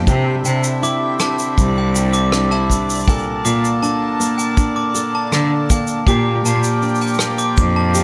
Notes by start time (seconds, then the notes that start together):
Already playing: A#3 D4
0.07 C3 D3 C4 E4 G4 D5 D6, kick, shaker
0.45 C3 D4 G5, shaker
0.64 shaker
0.82 E4 D6, shaker
1.20 D4 A5, cross-stick, shaker
1.39 shaker
1.58 C2 E4, kick, shaker
1.78 G5
1.95 G4, shaker
2.13 D6, shaker
2.32 D4, cross-stick, shaker
2.51 E4 A5
2.70 D4, kick, shaker
2.90 shaker
2.95 shaker
2.99 shaker
3.04 A#2 A#3 A4, kick, shaker
3.08 A4 G5, shaker
3.13 shaker
3.18 shaker
3.22 shaker
3.45 A#2 A#3 D6, shaker
3.65 shaker
3.82 D4 A5, shaker
4.20 A#3, shaker
4.38 G5, shaker
4.57 D4, kick, shaker
4.76 D6
4.95 A4, shaker
5.15 A5
5.32 D3 D4, cross-stick, shaker
5.70 A#3 G5, kick, shaker
5.87 shaker
6.07 A#2 F3 G4 D6, kick, shaker
6.45 A#2 A#3 A5, shaker
6.63 shaker
6.82 D4, shaker
6.88 shaker
6.95 shaker
7.01 G5, shaker
7.07 shaker
7.14 shaker
7.19 A#3, cross-stick, shaker
7.38 D6, shaker
7.57 F2 D4, kick, shaker
7.76 A5
7.95 G4, shaker